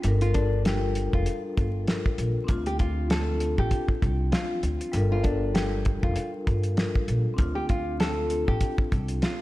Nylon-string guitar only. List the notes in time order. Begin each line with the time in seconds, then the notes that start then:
0.22 F4
0.34 D4
0.67 G4
1.14 F4
2.67 G4
2.80 F4
3.11 A4
3.59 G4
4.32 F4
5.12 F4
5.23 D4
5.54 G4
6.03 F4
7.55 G4
7.69 F4
8.00 A4
8.48 G4
9.23 F4